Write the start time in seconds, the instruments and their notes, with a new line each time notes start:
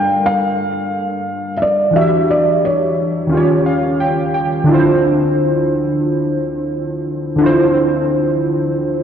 Already playing: synth keys G3 D4 A4 A#4 F5, felt piano G5
0.26 felt piano F5
1.57 felt piano E5
1.62 felt piano D5
1.91 synth keys E3 D4
1.96 synth keys F#4 G4, felt piano E5
2.01 synth keys E5
2.30 felt piano D5
2.65 felt piano C#5
3.27 synth keys D#3 C#4
3.32 synth keys F4 G4
3.37 synth keys C#5
3.66 synth keys F5
4.00 synth keys G5
4.34 synth keys G5
4.64 synth keys D3 D4
4.69 synth keys E4 F4
4.74 synth keys C5
7.36 synth keys D3 D4
7.41 synth keys E4 F4
7.46 synth keys C5